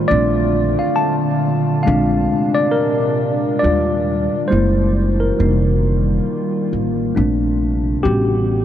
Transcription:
Already playing: tine electric piano G3 A3 D#4 C5, ambient pad F4
0.08 upright bass A#1, ambient pad A#2 D3 A3, tine electric piano A3 C4 D4 D5
0.79 tine electric piano F5
0.96 tine electric piano A5
1.83 tine electric piano G#3 C4 D4 F5
1.87 upright bass A#1, ambient pad C3 G#3 D4
2.54 tine electric piano D5
2.71 tine electric piano A#4
3.59 ambient pad D#3 G3 D4, tine electric piano G3 D4 D5
3.63 upright bass D#2, tine electric piano F4
4.48 ambient pad E3 G#3 F#4, tine electric piano G#3 A#3 E4 C5
4.52 upright bass F#1
5.20 tine electric piano A#4
5.39 upright bass F1, ambient pad D#3 G3 A#3 F4, tine electric piano G3 A#3 D#4
6.73 upright bass A1
7.15 upright bass A#1, ambient pad A#2 C3 A3 D4, tine electric piano A3 C4 D4
8.03 upright bass A1, ambient pad C#3 G3 B3 F#5, tine electric piano G3 B3 C#4 F#4 G4

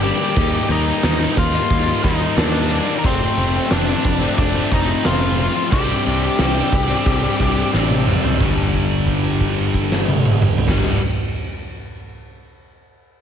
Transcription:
Already playing: picked electric bass G1, overdriven electric guitar G2
0.02 overdriven electric guitar D3 G3 A#3 D4, lead electric guitar G4 G5, crash
0.20 overdriven electric guitar G3 A#3 D4
0.36 picked electric bass D#2, overdriven electric guitar D#3 G3 A#3 D#4, kick, crash
0.69 picked electric bass D#2, overdriven electric guitar D#3 G3 A#3 D#4, lead electric guitar D#4 D#5, crash
1.03 picked electric bass D#2, overdriven electric guitar D#3 G3 A#3 D#4, snare, crash
1.19 overdriven electric guitar G3 A#3 D#4
1.35 picked electric bass D#2, lead electric guitar F4 F5, muted distorted electric guitar stroke, muted overdriven electric guitar stroke, kick, crash
1.54 overdriven electric guitar G3 A#3 D#4
1.70 picked electric bass D#2, kick, crash
1.88 overdriven electric guitar G3 A#3 D#4
2.04 picked electric bass D#2, overdriven electric guitar D#3 G3 A#3 D#4, lead electric guitar D#4 D#5, kick, crash
2.37 picked electric bass D#2, overdriven electric guitar D#3 G3 A#3 D#4, lead electric guitar D4 D5, snare, crash
2.53 distorted electric guitar G3 A#3 D#4
2.70 overdriven electric guitar D#3 G3 A#3 D#4, crash
2.88 overdriven electric guitar G3 A#3 D#4
2.99 lead electric guitar A#4
3.04 picked electric bass F1, overdriven electric guitar F2 C3 F3 A3 C4, lead electric guitar C4 C5, kick, crash
3.37 picked electric bass F1, overdriven electric guitar C3 F3 A3 C4, crash
3.70 picked electric bass F1, overdriven electric guitar F2 C3 F3 A3 C4, lead electric guitar D4 D5, snare, crash
3.87 overdriven electric guitar F3 A3 C4
4.03 picked electric bass F1, muted distorted electric guitar stroke, muted overdriven electric guitar stroke, kick, crash
4.20 overdriven electric guitar F3 A3 C4
4.38 picked electric bass F1, lead electric guitar D4 D5, kick, crash
4.54 overdriven electric guitar F3 A3 C4
4.71 picked electric bass F1, overdriven electric guitar C3 F3 A3 C4, lead electric guitar D#4 D#5, kick, crash
5.03 picked electric bass F1, overdriven electric guitar F2 C3 F3 A3 C4, lead electric guitar F4 F5, snare, crash
5.20 distorted electric guitar F3 A3 C4
5.37 overdriven electric guitar C3 F3 A3 C4, crash
5.54 overdriven electric guitar F3 A3 C4
5.71 picked electric bass C2, overdriven electric guitar C3 G3 C4 D4, lead electric guitar G4 G5, kick, crash
6.05 picked electric bass C2, overdriven electric guitar C3 G3 C4 D4, crash
6.38 picked electric bass C2, overdriven electric guitar C3 G3 C4 D4, snare, crash
6.56 overdriven electric guitar G3 C4 D4
6.70 picked electric bass C2, muted distorted electric guitar stroke, muted overdriven electric guitar stroke, kick, crash
6.90 overdriven electric guitar G3 C4 D4
7.06 picked electric bass C2, kick, crash
7.22 overdriven electric guitar G3 C4 D4
7.39 picked electric bass C2, overdriven electric guitar C3 G3 C4 D4, kick, crash
7.73 picked electric bass A1, overdriven electric guitar C3 G3 C4 D4, snare
7.88 distorted electric guitar G3 C4 D4, high tom
8.06 overdriven electric guitar C3 G3 C4 D4, mid tom
8.21 overdriven electric guitar G3 C4 D4, floor tom
8.38 picked electric bass G1, overdriven electric guitar G2 D3, kick, crash
8.42 overdriven electric guitar G3
8.74 kick, crash
8.92 crash
9.07 kick, crash
9.24 crash
9.41 kick, crash
9.58 crash
9.74 kick, crash
9.92 snare
10.09 high tom
10.25 mid tom
10.42 mid tom
10.58 floor tom
10.67 picked electric bass G1, overdriven electric guitar G2 D3 G3, kick, snare, crash

